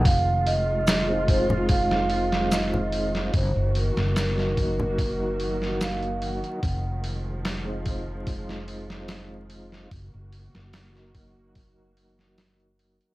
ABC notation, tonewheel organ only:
X:1
M:4/4
L:1/16
Q:1/4=73
K:Fphr
V:1 name="Tonewheel organ"
z4 z [A,CEF]8- [A,CEF]3 | z4 z [G,B,EG]8- [G,B,EG]3 | z4 z [A,CEF]8- [A,CEF]3 | z4 z [G,B,EG]8- [G,B,EG]3 |]